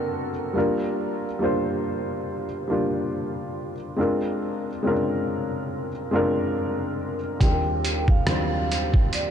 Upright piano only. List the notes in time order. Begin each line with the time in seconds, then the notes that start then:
Already playing: A#3 C4 D4 F#4 A4 A#4
0.53 G3 A#3 D4 F4
0.58 A#4
1.39 G3 A#3 D4 F4
1.44 C5
2.68 G3 A#3 D4 F4
2.73 G4
3.96 G#3 C4 D4 F4
4.01 A#4
4.83 G#3 C4 C#4 F4
4.87 A#4
4.91 D4
6.11 G#3 C4 D4 F4
6.16 A#4
7.40 D#2 G3 C4 D4 F4
7.45 G#4
7.51 A#4
8.26 D#2 F#3 C4 D4 F4
8.30 G3 C5